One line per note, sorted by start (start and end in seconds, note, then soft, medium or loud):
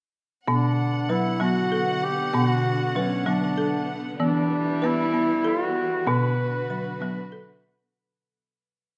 0.47 1.00 B2 medium
0.47 4.18 D3 medium
0.47 1.10 B3 medium
0.47 7.91 B3 soft
0.47 1.12 D4 medium
0.47 4.17 F#5 medium
1.09 1.35 F#3 medium
1.09 1.41 E4 medium
1.09 1.41 B4 medium
1.40 2.18 F#3 medium
1.40 1.72 B3 medium
1.40 2.06 F#4 medium
1.72 2.34 A4 medium
2.05 2.35 G4 medium
2.34 2.86 B2 medium
2.34 2.96 B3 medium
2.34 2.99 F#4 medium
2.95 3.22 F#3 medium
2.95 3.30 C#4 medium
2.95 3.27 B4 medium
3.26 4.05 F#3 medium
3.26 3.58 B3 medium
3.26 3.98 D4 medium
3.58 4.21 A4 medium
4.20 4.72 E3 medium
4.20 6.06 E3 medium
4.20 6.06 G3 medium
4.20 4.83 B3 medium
4.20 4.87 D4 medium
4.82 5.09 B3 medium
4.82 5.50 E4 medium
4.82 5.14 B4 medium
5.14 5.45 B3 medium
5.44 6.10 F#4 medium
5.44 6.07 A4 medium
6.07 6.59 B2 medium
6.07 7.93 D3 medium
6.07 6.70 B3 medium
6.07 7.93 F#4 medium
6.07 7.64 B4 medium
6.70 6.96 F#3 medium
6.70 7.01 B4 medium
7.01 7.79 F#3 medium
7.01 7.32 B3 medium
7.32 7.94 A4 medium